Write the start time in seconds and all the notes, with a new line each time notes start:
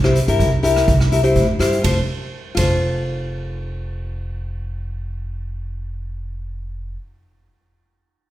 Already playing: C2
0.04 E4 G4 C5, cross-stick
0.16 closed hi-hat
0.28 G2 E4 G4 A#4, closed hi-hat
0.39 C2, kick, closed hi-hat
0.63 E4 G4 A#4, closed hi-hat
0.76 cross-stick, closed hi-hat
0.88 C2, kick, closed hi-hat
1.01 cross-stick
1.12 E4 G4 A#4, closed hi-hat
1.24 E4 G4 C5, closed hi-hat
1.36 A2, kick, closed hi-hat
1.59 G2 E4 G4 C5, cross-stick, closed hi-hat
1.73 closed hi-hat
1.82 F1 F4 A4 C5, kick, ride
2.55 F1 F4 A4 C5, kick, ride